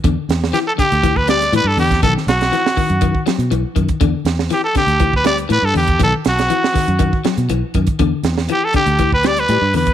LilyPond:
<<
  \new Staff \with { instrumentName = "Trumpet" } { \time 4/4 \key e \minor \tempo 4 = 120 r4 g'16 a'16 g'8. b'16 d''8 b'16 a'16 g'8 | a'8 fis'2 r4. | r4 g'16 a'16 g'8. b'16 d''8 b'16 a'16 g'8 | a'8 fis'2 r4. |
r4 g'16 a'16 g'8. b'16 d''16 b'8. b'8 | }
  \new Staff \with { instrumentName = "Clean electric guitar" } { \clef bass \time 4/4 \key e \minor d8 r8 e8 d8 e8 g8 e8 d8 | dis8 r8 e8 dis8 dis8 fis8 e8 dis8 | d8 r8 e8 d8 e8 g8 e8 d8 | dis8 r8 e8 dis8 dis8 fis8 e8 dis8 |
d8 r8 e8 d8 e8 g8 g8 d8 | }
  \new Staff \with { instrumentName = "Fingered electric bass" } { \clef bass \time 4/4 \key e \minor e,16 r16 e,8 r8. d,4~ d,16 a,16 g,16 e,8 | b,,16 r16 b,,8 r8. fis,8 r8 b,16 b,,16 r16 fis,16 r16 | e,16 r16 e,8 r8. d,4~ d,16 a,16 g,16 e,8 | b,,16 r16 b,,8 r8. fis,8 r8 b,16 b,,16 r16 fis,16 r16 |
e,16 r16 e,8 r8. d,4~ d,16 a,16 g,16 e,8 | }
  \new DrumStaff \with { instrumentName = "Drums" } \drummode { \time 4/4 <hh bd>8 <hh sn>16 sn16 <hh sn>8 <hh bd>16 hh16 <hh bd>16 bd16 <hh sn>16 <hh sn>16 hh8 hho16 <hh bd sn>16 | <hh bd>16 sn16 <hh sn>16 <hh sn>16 <hh sn>16 sn16 <hho bd>16 hh16 <hh bd>16 bd16 <hh sn>16 hh16 hh8 <hh bd>16 <hh bd>16 | <hh bd>8 <hh sn>16 sn16 <hh sn>8 <hh bd sn>16 hh16 <hh bd>16 bd16 <hh sn>16 hh16 hh8 hho16 <hh bd>16 | <hh bd>8 <hh sn>16 <hh sn>16 hh16 sn16 <hho bd sn>16 hh16 <hh bd>16 bd16 <hh sn>16 hh16 hh8 <hh bd>16 <hh bd>16 |
<hh bd>8 <hh sn>16 sn16 hh8 <hh bd>16 hh16 <hh bd>16 bd16 <hh sn>16 hh16 hh8 hho16 <hh bd>16 | }
>>